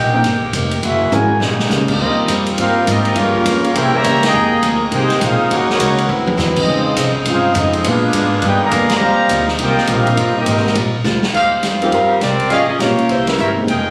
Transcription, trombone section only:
1.89 A#3 C4 D#4
2.58 A#3 C4 F4
2.88 A#3 C4 D#4
3.16 A#3 C#4 F4
3.74 A#3 E4 G4
3.93 E3 G3 A#3
4.22 C3 D#3 A#3
4.93 C4 D#4 G4
5.24 G#3 C4 F4
5.52 A#3 C#4 F#4
5.71 A#3 C#4 F#4
6.58 G#3 C4 D#4
7.28 G#3 C4 F4
7.57 G#3 C4 D#4
7.87 G#3 D4 F4
8.46 G4
8.64 D3 F3 A#3
8.92 C3 G3 A#3
9.59 A#3 C4 G4
9.89 A#3 C4 F4
10.08 A#3 C4 F4
10.37 A#3 C4 D#4

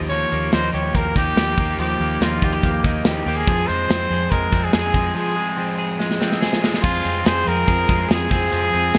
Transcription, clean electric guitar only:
Already playing: F3 A#3
0.11 F3
0.32 A#3
0.53 D#4
0.74 G4
0.96 A#3
1.16 D#4
1.37 G4
1.59 A#3
1.79 F3
2.01 A#3
2.21 D#4
2.42 F4
2.53 G4
2.64 A#3
2.85 D#4
3.06 G4
3.27 A#3
3.47 F3
3.68 G#3
3.89 C4
4.10 G#4
4.32 G#3
4.53 C4
4.73 G#4
4.94 G#3
5.14 F3
5.36 G#3
5.56 C4
5.78 G#4
5.99 G#3
6.20 C4
6.41 G#4
6.62 G#3
6.83 F3 G#4
7.05 C4
7.25 G#4
7.47 C4
7.67 G#4
7.88 G#3
8.08 G#4
8.30 C4
8.52 F3 G#4
8.73 C4
8.94 G#4

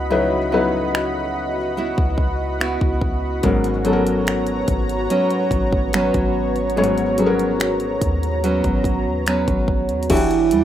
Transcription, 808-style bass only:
Already playing: C#2
1.98 C#2
2.81 C#2
3.44 G#1
4.68 G#1
5.51 G#1
6.14 G#1
8.02 D#2
8.65 G#1
9.06 D#2
9.48 G#1
9.89 D#2
10.10 E1
10.52 E2

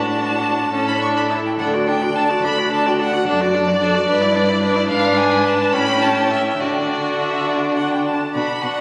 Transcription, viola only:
Already playing: D4
0.72 C#4
1.01 D4
1.30 E4
1.59 D4
1.74 F#4
1.87 D4
2.01 F#4
2.15 D4
2.30 F#4
2.44 D4
2.58 F#4
2.73 D4
2.86 F#4
2.99 D4
3.13 F#4
3.27 D4
3.41 F#4
3.54 D4
3.69 F#4
3.82 D4
3.95 F#4
4.09 D4
4.22 E4
4.35 D4
4.49 E4
4.62 D4
4.75 E4
4.89 D4
5.73 C#4
6.60 D4
8.35 D4
8.62 D4

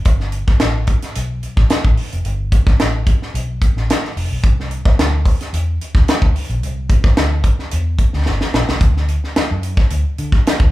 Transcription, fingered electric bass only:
0.06 G1
0.61 A1
1.16 B1
1.57 A1
1.71 muted fingered electric bass stroke
1.84 A1
2.13 F1
2.26 G1
2.80 A1
3.34 B1
3.76 A1
4.16 F1
4.31 B1
4.44 C2
4.99 D2
5.53 E2
5.95 D2
6.08 muted fingered electric bass stroke
6.22 D2
6.49 A#1
6.62 C2
7.18 D2
7.73 E2
8.14 D2
8.27 G1
8.54 A#1
8.69 C2
8.81 D2
9.37 muted fingered electric bass stroke
9.51 F#2
9.91 D2
10.19 D3
10.60 D2

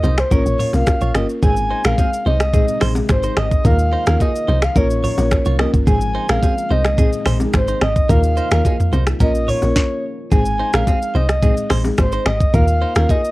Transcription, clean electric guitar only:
0.04 D#4 C5
0.32 C#4 A#4
0.59 F4 C#5
1.02 F4 C#5
1.15 G4 D#5
1.43 C4 G#4
1.70 D#4 C5
1.85 C#4 A#4
1.98 C4 G#4
2.26 D#4 C5
2.54 C4 G#4
2.82 D#4 C5
3.24 D#4 C5
3.37 G4 D#5
3.65 D#4 A#4
3.93 D#4 C5
4.07 C#4 A#4
4.20 D#4 G#4
4.48 D#4 C5
4.76 C#4 A#4
5.04 F4 C#5
5.46 F4 C#5
5.59 G4 D#5
5.87 C4 G#4
6.15 D#4 C5
6.29 C#4 A#4
6.43 C4 G#4
6.71 D#4 C5
6.98 C4 G#4
7.26 D#4 C5
7.68 D#4 C5
7.82 G4 D#5
8.09 D#4 A#4
8.37 D#4 C5
8.52 C#4 A#4
8.65 D#4 G#4
8.93 D#4 C5
9.20 C#4 A#4
9.48 F4 C#5
10.32 C4 G#4
10.59 D#4 C5
10.74 C#4 A#4
10.87 C4 G#4
11.15 D#4 C5
11.43 C4 G#4
11.70 D#4 C5
12.13 D#4 C5
12.26 G4 D#5
12.54 D#4 A#4
12.82 D#4 C5
12.96 C#4 A#4
13.09 D#4 G#4

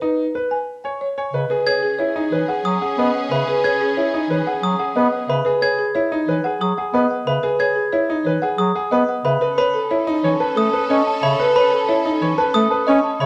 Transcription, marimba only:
0.01 B4
0.34 B4
0.51 G#5
0.84 G#5
1.01 C#5
1.18 G#5
1.34 D#5
1.50 B4
1.66 C#5
1.83 G#4
1.99 C#5
2.32 C#5
2.48 F#5
2.82 F#5
2.99 D#5
3.15 F#5
3.32 E5
3.48 B4
3.64 C#5
3.81 G#4
3.97 C#5
4.30 C#5
4.47 F#5
4.79 F#5
4.96 D#5
5.12 F#5
5.28 E5
5.45 B4
5.61 C#5
5.79 G#4
5.95 C#5
6.28 C#5
6.44 F#5
6.61 G#4
6.78 F#5
6.94 D#5
7.11 F#5
7.27 E5
7.43 B4
7.59 C#5
7.76 G#4
7.92 C#5
8.25 C#5
8.42 F#5
8.58 G#4
8.76 F#5
8.91 D#5
9.09 F#5
9.25 E5
9.41 B4
9.58 C#5
9.74 A4
9.91 C#5
10.23 C#5
10.41 A5
10.56 A4
10.73 A5
10.90 D#5
11.07 A5
11.23 E5
11.40 B4
11.56 C#5
11.72 A4
11.88 C#5
12.22 C#5
12.38 A5
12.54 A4
12.70 A5
12.87 D#5
13.04 A5
13.21 E5

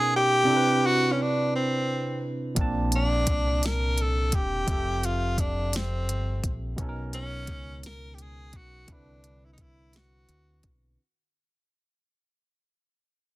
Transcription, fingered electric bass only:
2.57 A#1
3.27 C2
4.33 E1
4.68 F1
6.09 G1
6.44 A#1
6.79 B1
7.49 C#2
8.54 B1
8.89 C2
10.29 D2
10.65 B1

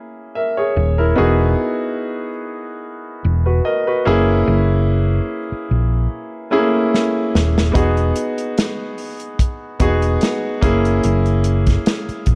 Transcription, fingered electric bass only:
0.77 D#1
1.18 E1
3.25 E1
4.07 F#1
4.47 F#1
5.52 muted fingered electric bass stroke
5.71 A#1
7.35 D#1
7.76 E1
9.81 E1
10.63 F#1
11.05 F#1
12.09 muted fingered electric bass stroke
12.28 A#1

